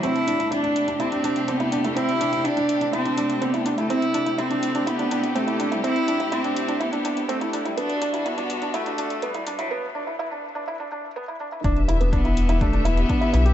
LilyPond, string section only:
\new Staff \with { instrumentName = "String section" } { \time 4/4 \key d \mixolydian \tempo 4 = 124 << { <c d' g'>1~ | <c d' g'>1 | <c e' g'>1~ | <c e' g'>1 |
<b, d' fis'>1 | r1 | <d' b' e''>1 | } \\ { a1~ | a1~ | a1~ | a1 |
g1 | r1 | g'1 | } >> }